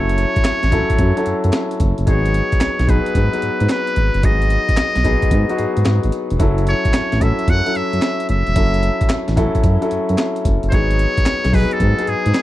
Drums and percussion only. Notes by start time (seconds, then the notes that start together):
0.09 closed hi-hat
0.18 closed hi-hat
0.36 kick, closed hi-hat
0.45 snare, clap, closed hi-hat
0.63 snare, closed hi-hat
0.72 kick, closed hi-hat
0.90 kick, closed hi-hat
0.98 kick, closed hi-hat
1.17 closed hi-hat
1.26 closed hi-hat
1.44 closed hi-hat
1.53 snare, clap, closed hi-hat
1.71 closed hi-hat
1.80 kick, closed hi-hat
1.98 closed hi-hat
2.07 kick, closed hi-hat
2.26 closed hi-hat
2.34 closed hi-hat
2.52 kick, closed hi-hat
2.61 snare, clap, closed hi-hat
2.79 snare, closed hi-hat
2.88 kick, closed hi-hat
3.06 closed hi-hat
3.15 kick, closed hi-hat
3.33 closed hi-hat
3.42 closed hi-hat
3.60 closed hi-hat
3.69 snare, clap, closed hi-hat
3.87 closed hi-hat
3.96 closed hi-hat
4.14 closed hi-hat
4.23 kick, closed hi-hat
4.42 closed hi-hat
4.50 closed hi-hat
4.69 kick, closed hi-hat
4.77 snare, clap, closed hi-hat
4.95 snare, closed hi-hat
5.04 kick, closed hi-hat
5.22 kick, closed hi-hat
5.31 kick, closed hi-hat
5.49 closed hi-hat
5.58 closed hi-hat
5.77 closed hi-hat
5.85 snare, clap, closed hi-hat
6.03 closed hi-hat
6.12 closed hi-hat
6.30 closed hi-hat
6.40 kick, closed hi-hat
6.58 closed hi-hat
6.67 closed hi-hat
6.85 kick, closed hi-hat
6.94 snare, clap, closed hi-hat
7.12 snare, closed hi-hat
7.21 kick, closed hi-hat
7.39 closed hi-hat
7.48 kick, closed hi-hat
7.66 closed hi-hat
7.75 closed hi-hat
7.93 closed hi-hat
8.02 snare, clap, closed hi-hat
8.20 closed hi-hat
8.29 closed hi-hat
8.47 closed hi-hat
8.56 kick, closed hi-hat
8.74 closed hi-hat
8.83 closed hi-hat
9.01 kick, closed hi-hat
9.10 snare, clap, closed hi-hat
9.28 snare, closed hi-hat
9.37 kick, closed hi-hat
9.55 kick, closed hi-hat
9.64 kick, closed hi-hat
9.82 closed hi-hat
9.91 closed hi-hat
10.09 closed hi-hat
10.18 snare, clap, closed hi-hat
10.36 closed hi-hat
10.45 kick, closed hi-hat
10.63 closed hi-hat
10.72 kick, closed hi-hat
10.91 closed hi-hat
10.99 closed hi-hat
11.17 kick, closed hi-hat
11.26 snare, clap, closed hi-hat
11.44 snare, closed hi-hat
11.53 kick, open hi-hat
11.71 closed hi-hat
11.80 kick, closed hi-hat
11.99 closed hi-hat
12.07 closed hi-hat
12.26 closed hi-hat
12.34 snare, clap, closed hi-hat